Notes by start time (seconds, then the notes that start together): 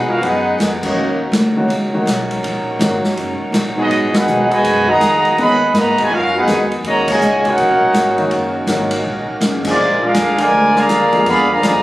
Already playing: D#3 G#3 B3 F#4
0.09 C#4 F4 F#4 A#4 F5
0.22 F#2 B3 D#4 F#4 G#4 B4 F#5, ride
0.58 F2, snare, hi-hat pedal, ride
0.83 F#3 A#3 C#4 D#4 F#4 C#5, kick, crash
0.95 D#2 A#3 C#4 D#4
1.32 D2, snare, hi-hat pedal, ride
1.57 D#3 F#3 A#3 C#4 F#4
1.68 C#2, ride
1.94 D#3 F#3 A#3 C#4 F#4
2.06 B1, snare, hi-hat pedal, ride
2.31 ride
2.43 A#1, ride
2.79 G#1 D#3 F#3 A#3 C#4 F#4, snare, hi-hat pedal, ride
3.04 snare
3.17 F#1, ride
3.40 muted upright bass stroke
3.52 A#1, snare, hi-hat pedal, ride
3.76 F#3 B3 D#4 F#4 G#4 D#5
3.89 G#1 B2 G#3, ride
4.12 B3 D#4 F#4 G#4 B4 F#5, snare, ride
4.26 B1 D#3 F#3 G#3 B3 F#4, hi-hat pedal
4.50 B2 D#3 G#3 F#4 B4 D#5 G#5, ride
4.63 F#2, ride
4.88 D#3 A#3 F#4 G#4 D#5 F#5 A#5
5.00 F2, snare, hi-hat pedal, ride
5.25 ride
5.37 D#2 D#3 F#3 G#3 B3 F#4 G#4 D#5 F#5 B5, ride
5.73 G#2 A#3 F#4 B4 D#5 A#5, snare, hi-hat pedal, ride
5.98 B2 D#3 G#3 F#4 B4 D#5 G#5, kick, ride
6.09 F#2 C#4 F4 F#4 A#4 F5
6.35 B3 D#4 F#4 G#4 B4 F#5
6.46 F2 D#3 G#3 B3 F#4 G#4, snare, hi-hat pedal, ride
6.71 ride
6.83 D#2 C#3 F#3 A#3 C#4 F#4 C#5 D#5 A#5, ride
7.08 A#2 C#3 G#3 F#4 C#5 D#5 G#5, kick, crash
7.20 C#2, hi-hat pedal
7.45 A#3 C#4 D#4 F#4 A#4 C#5 F#5, kick, ride
7.57 A#1, ride
7.69 F#1
7.80 D#1
7.93 G#1, snare, hi-hat pedal, ride
8.18 D#3 F#3 A#3 C#4 F#4, ride
8.30 F#1, ride
8.67 G#1 D#3 F#3 A#3 C#4 F#4, snare, hi-hat pedal, ride
8.91 ride
9.04 A#1
9.28 muted upright bass stroke
9.41 F#1, snare, hi-hat pedal, ride
9.65 F3 G#3 A#3 D4 F4 G#4 D5, kick, crash
9.78 A#1 D3 G#3 D4
10.02 G#3 D4 F4 G#4 A#4 F5
10.14 F2, snare, hi-hat pedal, ride
10.38 D3 F3 G#3 F4 A#4 D5 G#5, ride
10.51 D2
10.75 D3 F3 A#3 G#4 D5 F5 A#5, snare
10.89 D#2, snare, hi-hat pedal, ride
11.12 F3 G#3 A#3 D4 G#4, ride
11.26 F2 B3 G#4 D5 F5 B5, ride
11.50 D3 F3 A#3 G#4 D5 F5 A#5
11.62 F#2 D3 F3 G#3 A#3 D4 G#4 D5 F5 A#5, snare, hi-hat pedal, ride